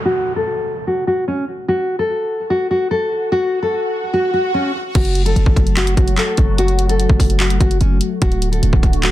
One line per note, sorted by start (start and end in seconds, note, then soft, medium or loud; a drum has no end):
0.00 downlifter medium
0.05 0.34 F#4 loud
0.36 0.84 A4 medium
0.87 1.03 F#4 medium
1.07 1.23 F#4 medium
1.28 1.44 C#4 medium
1.68 1.97 F#4 medium
1.68 swell medium
1.99 2.47 A4 medium
2.50 2.66 F#4 medium
2.71 2.87 F#4 medium
2.91 3.29 A4 medium
3.32 3.61 F#4 medium
3.62 4.10 A4 medium
4.13 4.30 F#4 medium
4.34 4.50 F#4 medium
4.54 4.70 C#4 medium
4.95 5.34 F#1 loud
4.95 8.18 F#3 medium
4.95 9.12 A3 medium
4.95 8.18 F#4 medium
4.95 5.24 F#4 medium
4.95 kick loud
4.95 closed hi-hat medium
4.95 crash loud
5.05 closed hi-hat medium
5.15 closed hi-hat medium
5.26 5.74 A4 medium
5.26 closed hi-hat medium
5.36 5.46 F#1 loud
5.36 closed hi-hat medium
5.46 5.56 F#1 loud
5.46 kick medium
5.56 5.96 F#1 loud
5.56 kick loud
5.56 closed hi-hat medium
5.67 closed hi-hat medium
5.77 5.93 F#4 medium
5.77 clap loud
5.77 closed hi-hat medium
5.87 closed hi-hat medium
5.97 6.17 F#1 loud
5.97 6.13 F#4 medium
5.97 kick loud
5.97 closed hi-hat medium
6.08 closed hi-hat medium
6.17 6.56 A4 medium
6.17 clap medium
6.17 closed hi-hat medium
6.37 7.07 F#1 loud
6.37 kick loud
6.37 closed hi-hat medium
6.58 6.87 F#4 loud
6.58 closed hi-hat medium
6.68 closed hi-hat medium
6.79 closed hi-hat medium
6.89 7.37 A4 medium
6.89 closed hi-hat medium
7.00 closed hi-hat medium
7.09 7.19 F#1 loud
7.09 kick medium
7.20 7.59 F#1 loud
7.20 kick loud
7.20 open hi-hat medium
7.30 closed hi-hat medium
7.40 7.56 F#4 medium
7.40 clap loud
7.40 closed hi-hat medium
7.50 closed hi-hat loud
7.60 7.80 F#1 loud
7.60 7.76 F#4 medium
7.60 kick medium
7.60 closed hi-hat medium
7.71 closed hi-hat medium
7.81 8.00 F#1 loud
7.81 7.97 C#4 medium
7.81 closed hi-hat medium
8.01 closed hi-hat medium
8.22 8.61 D1 loud
8.22 9.12 D3 medium
8.22 9.12 F#4 medium
8.22 8.51 F#4 medium
8.22 kick loud
8.22 closed hi-hat medium
8.32 closed hi-hat medium
8.42 closed hi-hat medium
8.52 9.00 A4 medium
8.52 closed hi-hat medium
8.63 8.72 D1 loud
8.63 closed hi-hat medium
8.73 9.12 D1 loud
8.73 kick medium
8.83 kick loud
8.83 closed hi-hat medium
8.93 closed hi-hat medium
9.03 9.12 F#4 medium
9.03 clap loud
9.03 closed hi-hat medium